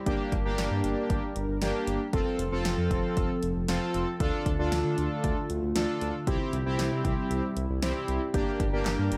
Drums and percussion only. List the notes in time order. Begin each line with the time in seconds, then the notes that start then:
0.06 kick, closed hi-hat
0.32 kick, closed hi-hat
0.58 snare, closed hi-hat
0.84 closed hi-hat
1.10 kick, closed hi-hat
1.36 closed hi-hat
1.62 snare, closed hi-hat
1.87 closed hi-hat
2.13 kick, closed hi-hat
2.39 closed hi-hat
2.65 snare, closed hi-hat
2.91 kick, closed hi-hat
3.17 kick, closed hi-hat
3.43 closed hi-hat
3.68 snare, closed hi-hat
3.94 closed hi-hat
4.20 kick, closed hi-hat
4.46 kick, closed hi-hat
4.72 snare, closed hi-hat
4.98 closed hi-hat
5.24 kick, closed hi-hat
5.50 closed hi-hat
5.76 snare, closed hi-hat
6.01 closed hi-hat
6.27 kick, closed hi-hat
6.53 closed hi-hat
6.79 snare, closed hi-hat
7.05 kick, closed hi-hat
7.31 closed hi-hat
7.57 closed hi-hat
7.82 snare, closed hi-hat
8.08 closed hi-hat
8.34 kick, closed hi-hat
8.60 kick, closed hi-hat
8.86 snare, clap, closed hi-hat
9.12 closed hi-hat